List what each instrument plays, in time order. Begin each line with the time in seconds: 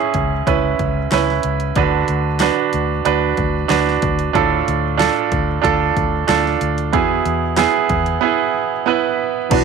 Already playing: grand piano G#2 C#4 E4 G#4 B4
0.14 fingered electric bass C#2, kick, closed hi-hat
0.47 fingered electric bass C#2, grand piano C#4 E4 B4, kick, closed hi-hat
0.79 fingered electric bass C#2, kick, closed hi-hat
1.12 fingered electric bass C#2, grand piano C#4 E4 B4, snare, closed hi-hat
1.28 snare
1.43 fingered electric bass C#2, closed hi-hat
1.60 closed hi-hat
1.76 fingered electric bass D2, grand piano D3 D4 F#4 B4, kick, closed hi-hat
2.08 fingered electric bass D2, closed hi-hat
2.40 grand piano D4 F#4 B4, snare, closed hi-hat
2.73 fingered electric bass D2, closed hi-hat
3.05 fingered electric bass D2, grand piano D4 F#4 B4, closed hi-hat
3.37 fingered electric bass D2, kick, closed hi-hat
3.68 fingered electric bass D2, grand piano D4 F#4 B4, snare, closed hi-hat
3.87 snare
4.02 fingered electric bass D2, kick, closed hi-hat
4.19 closed hi-hat
4.33 fingered electric bass D2, grand piano A2 D4 F4 A4, kick, closed hi-hat
4.68 fingered electric bass D2, closed hi-hat
4.97 grand piano D4 F4 A4, snare, closed hi-hat
5.32 fingered electric bass D2, kick, closed hi-hat
5.62 fingered electric bass D2, grand piano D4 F4 A4, kick, closed hi-hat
5.97 fingered electric bass D2, kick, closed hi-hat
6.27 fingered electric bass D2, grand piano D4 F4 A4, snare, closed hi-hat
6.45 snare
6.61 fingered electric bass D2, closed hi-hat
6.78 closed hi-hat
6.93 fingered electric bass E2, grand piano B2 B3 E4 G#4, kick, closed hi-hat
7.26 fingered electric bass E2, closed hi-hat
7.57 grand piano B3 E4 G#4, snare, closed hi-hat
7.89 fingered electric bass E2, kick, closed hi-hat
8.06 closed hi-hat
8.21 grand piano B3 E4 G#4
8.86 grand piano B3 E4 B4
9.50 fingered electric bass B1, french horn section E3 E4, grand piano B3 D4 F#4 B4, kick, crash, ride